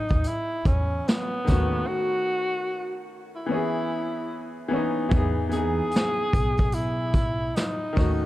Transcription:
0.00 1.49 E3 medium
0.00 1.49 B3 medium
0.00 0.29 D#4 loud
0.00 1.49 G#4 medium
0.08 0.23 D#2 medium
0.08 kick medium
0.08 closed hi-hat soft
0.24 0.68 E4 loud
0.24 closed hi-hat medium
0.65 1.00 E2 medium
0.65 1.09 C#4 medium
0.65 kick medium
0.65 closed hi-hat medium
1.08 1.89 B3 loud
1.08 snare loud
1.08 closed hi-hat medium
1.45 2.77 D#3 medium
1.45 2.79 A3 medium
1.45 kick medium
1.45 closed hi-hat medium
1.49 1.82 D#2 loud
1.49 2.80 C#4 medium
1.49 2.81 F#4 medium
1.49 snare soft
1.87 3.04 F#4 loud
3.36 4.68 E4 loud
3.46 4.49 E3 medium
3.46 4.50 B3 medium
3.51 4.51 C#4 medium
3.51 4.53 G#4 medium
4.68 5.01 E3 medium
4.68 5.03 B3 medium
4.73 5.04 C#4 medium
4.73 5.05 D#4 medium
5.09 5.79 E2 loud
5.09 5.42 E3 medium
5.09 5.43 B3 medium
5.09 kick loud
5.09 closed hi-hat medium
5.14 5.45 D#4 medium
5.14 5.46 G#4 medium
5.49 6.68 E3 medium
5.49 6.69 B3 medium
5.49 6.75 G#4 loud
5.49 closed hi-hat medium
5.54 6.70 D#4 medium
5.54 6.72 G#4 medium
5.91 closed hi-hat medium
5.96 snare loud
6.33 7.51 B1 medium
6.33 kick medium
6.33 closed hi-hat medium
6.57 kick medium
6.57 closed hi-hat soft
6.72 7.58 E4 loud
6.72 closed hi-hat medium
7.13 kick loud
7.13 closed hi-hat medium
7.56 8.26 D#4 medium
7.56 snare loud
7.56 closed hi-hat medium
7.93 8.26 D#3 medium
7.93 8.26 A3 medium
7.93 open hi-hat soft
7.97 8.26 D#2 medium
7.97 8.26 C#4 medium
7.97 8.26 F#4 medium
7.97 kick medium
7.97 snare soft

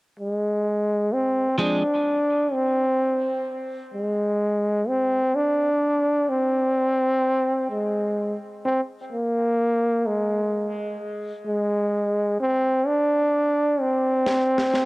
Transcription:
0.19 1.14 G#3 medium
1.13 1.59 C4 loud
1.58 1.82 F3 medium
1.58 1.82 G#3 medium
1.58 1.82 C4 medium
1.58 2.54 D4 loud
1.58 1.82 G#4 medium
2.53 3.46 C4 medium
3.94 4.90 G#3 medium
4.88 5.37 C4 loud
5.35 6.31 D4 loud
6.29 7.69 C4 loud
7.70 8.37 G#3 medium
8.65 8.81 C4 loud
9.12 10.08 A#3 medium
10.06 10.99 G#3 medium
11.47 12.35 G#3 medium
12.40 12.88 C4 loud
12.87 13.82 D4 loud
13.81 14.85 C4 loud
14.26 snare medium
14.58 snare medium
14.74 snare medium

